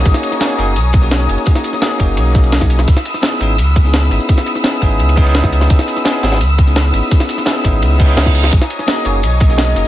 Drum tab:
RD |x-xxx-x-x-x-x-x-|x-x-x-x-x-x-x-x-|x-xxx-x-x-x-x-x-|x-x-x-x-xx-xx-x-|
HH |x-x-x-x-x-xxx-xx|x-xxx-x-x-xxx-xx|x-x-x-x-x-xxx-xx|x-x-x-x-x-xxx-xx|
SH |--x--xx--xx--xx-|--x--xx--xx--xx-|--x--xx--xx--xx-|--x--xx--xx--xx-|
SD |-o-oo-------o---|-o-oo-------oo-o|-o-oo-------o---|-o-oo-------oo-o|
BD |o---------o-----|o-----o---o--o--|o---------o-----|o-----o---o--o--|

RD |x-xxx-xxx-x-x-x-|x-x-x-x-x-xxx-x-|x-xxx-x-x-x-x-x-|
HH |x-x-x-x-x-xxx-xx|x-xxx-x-x-xxx-xx|x-x-x-x-x-xxx-x-|
SH |--x--xx--xx--xx-|-xx--xx--xx--xx-|--x--xx--xx--xx-|
SD |-o-oo-oo----o---|-o-oo-------oo-o|-o-oo-------o---|
BD |o---------o-----|o-----o---o--o--|o---------o-----|